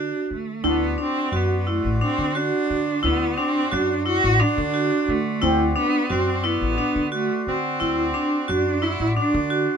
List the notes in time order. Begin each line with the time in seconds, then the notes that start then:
Already playing: D4 F#4
0.31 D3 A3
0.64 D2 B3 D4 E4 F#4 D5 C6
0.98 D4
1.02 C4
1.32 F#2 B3 F#4
1.67 A3 E4
1.85 A1
2.01 C4 D4
2.18 D3
2.35 D4 F#4
2.70 D3
3.03 D2 B3 E4
3.38 C4 D4
3.72 F#2 D4 F#4
4.06 E4 F#4
4.24 A1
4.40 D4
4.58 D3
4.74 F#4
5.08 D3 A3
5.42 D2 C4 E4
5.76 B3 D4
6.10 F#2 C4 F#4
6.44 B3 E4
6.61 A1
6.78 D4
6.96 D3
7.12 A3 F#4
7.47 D3 C4
7.80 D2 E4
8.14 D4
8.48 F#2 D4 F#4
8.82 E4
9.00 A1
9.16 D4
9.34 D3
9.50 F#4